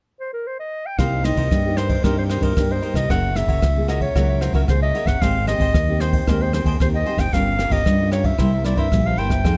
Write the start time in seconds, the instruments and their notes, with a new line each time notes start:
0.20 clarinet C5
0.34 clarinet A#4
0.47 clarinet C5
0.60 clarinet D#5
0.87 clarinet G5
0.98 fingered electric bass C2, nylon-string guitar C3 A#3 D#4 G4, cavaquinho D#4 A#4 C5 D#5, clarinet F5, kick, cross-stick, ride
1.24 nylon-string guitar A#3 D#4 G4, cavaquinho D#4 A#4 C5 D#5, clarinet D#5, cross-stick, ride
1.36 fingered electric bass C2, cavaquinho D#4 A#4 C5 D#5, kick, ride
1.51 nylon-string guitar G2 A#3 D#4 G4, fingered electric bass G2, kick, cross-stick, ride
1.64 nylon-string guitar A#3 D#4 G4
1.77 cavaquinho D#4 A#4 C5 D#5, clarinet C5, cross-stick, ride
1.89 cavaquinho A#4 C5 D#5, kick, ride
2.04 fingered electric bass G2, nylon-string guitar C3 A#3 D#4 G4, cavaquinho D#4 A#4 C5 D#5, clarinet A#4, kick, cross-stick, ride
2.17 cavaquinho A#4 C5 D#5, clarinet C5
2.29 cavaquinho D#4 A#4 C5 D#5, clarinet C5, cross-stick, ride
2.41 fingered electric bass G2, cavaquinho D#4 A#4 C5 D#5, clarinet A#4, kick, ride
2.57 nylon-string guitar G2 A#3 D#4 G4, fingered electric bass G2, kick, cross-stick, ride
2.71 cavaquinho A#4 C5 D#5, clarinet C5
2.82 nylon-string guitar A#3 D#4 G4, cavaquinho D#4 A#4 C5 D#5, ride
2.94 fingered electric bass C2, cavaquinho A#4 C5 D#5, clarinet D#5, kick, cross-stick, ride
3.10 fingered electric bass F#1, nylon-string guitar F#3 A#3 E4 G#4, cavaquinho F#4 A#4 C#5 E5, clarinet F#5, kick, cross-stick, ride
3.35 nylon-string guitar A#3 E4 G#4, cavaquinho F#4 A#4 C#5 E5, clarinet E5, cross-stick, ride
3.47 fingered electric bass F#1, cavaquinho F#4 A#4 C#5 E5, kick, ride
3.62 fingered electric bass C#2, nylon-string guitar C#3, kick, cross-stick, ride
3.76 nylon-string guitar A#3 E4 G#4
3.88 cavaquinho F#4 A#4 C#5 E5, clarinet D#5, cross-stick, ride
4.01 cavaquinho A#4 C#5 E5, clarinet C#5, kick, ride
4.15 fingered electric bass C#2, nylon-string guitar F#3 A#3 E4 G#4, cavaquinho F#4 A#4 C#5 E5, kick, cross-stick, ride
4.29 cavaquinho A#4 C#5 E5
4.41 cavaquinho F#4 A#4 C#5 E5, clarinet C5, cross-stick, ride
4.52 fingered electric bass C#2, cavaquinho F#4 A#4 C#5 E5, clarinet A#4, kick, ride
4.68 fingered electric bass C#2, nylon-string guitar C#3 A#3 E4 G#4, clarinet C5, kick, cross-stick, ride
4.83 cavaquinho A#4 C#5 E5, clarinet D#5
4.94 nylon-string guitar A#3 E4 G#4, cavaquinho F#4 A#4 C#5 E5, ride
5.05 fingered electric bass G1, cavaquinho A#4 C#5 E5, clarinet F#5, kick, cross-stick, ride
5.21 fingered electric bass G#1, nylon-string guitar G#3 C4 G4 A#4, cavaquinho G#4 C5 D#5 G5, clarinet F5, kick, cross-stick, ride
5.47 nylon-string guitar C4 G4 A#4, cavaquinho G#4 C5 D#5 G5, clarinet D#5, cross-stick, ride
5.58 fingered electric bass G#1, cavaquinho G#4 C5 D#5 G5, kick, ride
5.74 fingered electric bass D#2, nylon-string guitar D#3, kick, cross-stick, ride
5.88 nylon-string guitar C4 G4 A#4
6.00 cavaquinho G#4 C5 D#5 G5, clarinet C5, cross-stick, ride
6.13 cavaquinho C5 D#5 G5, kick, ride
6.27 fingered electric bass D#2, nylon-string guitar G#3 C4 G4 A#4, cavaquinho G#4 C5 D#5 G5, clarinet A#4, kick, cross-stick, ride
6.41 clarinet C5, cavaquinho C5 D#5 G5
6.53 nylon-string guitar C4 G4 A#4, cavaquinho G#4 C5 D#5 G5, clarinet C5, cross-stick, ride
6.64 fingered electric bass D#2, cavaquinho G#4 C5 D#5 G5, kick, ride
6.80 fingered electric bass D#2, nylon-string guitar D#3 C4 G4 A#4, clarinet C5, kick, cross-stick, ride
6.94 cavaquinho C5 D#5 G5, clarinet D#5
7.06 nylon-string guitar C4 G4 A#4, cavaquinho G#4 C5 D#5 G5, ride
7.17 fingered electric bass F#1, cavaquinho C5 D#5 G5, clarinet G5, kick, cross-stick, ride
7.33 fingered electric bass G1, nylon-string guitar G3 C#4 F4 A#4, cavaquinho G4 A#4 C#5 F5, clarinet F5, kick, cross-stick, ride
7.59 nylon-string guitar C#4 F4 A#4, cavaquinho G4 A#4 C#5 F5, cross-stick, ride
7.70 fingered electric bass G1, cavaquinho G4 A#4 C#5 F5, clarinet D#5, kick, ride
7.86 fingered electric bass G2, nylon-string guitar G3 C#4 F4 A#4, kick, cross-stick, ride
8.00 nylon-string guitar C#4 F4 A#4
8.11 cavaquinho G4 A#4 C#5 F5, clarinet C#5, cross-stick, ride
8.24 cavaquinho A#4 C#5 F5, clarinet E5, kick, ride
8.38 fingered electric bass C2, nylon-string guitar C3 G3 A#3 E4, cavaquinho E4 A#4 C5 E5, kick, cross-stick, ride
8.52 cavaquinho A#4 C5 E5
8.64 nylon-string guitar G3 A#3 E4, cavaquinho E4 A#4 C5 E5, clarinet D5, cross-stick, ride
8.76 fingered electric bass G2, cavaquinho E4 A#4 C5 E5, clarinet E5, kick, ride
8.92 fingered electric bass A#1, nylon-string guitar G2 G3 A#3 E4, kick, cross-stick, ride
9.06 cavaquinho A#4 C5 E5, clarinet F5
9.17 fingered electric bass G1, nylon-string guitar G3 A#3 E4, cavaquinho E4 A#4 C5 E5, clarinet G5, ride
9.30 cavaquinho A#4 C5 E5, kick, cross-stick, ride
9.44 fingered electric bass F2, nylon-string guitar F3 C4 D#4 G#4, cavaquinho D#4 G#4 C5 F5, kick, cross-stick, ride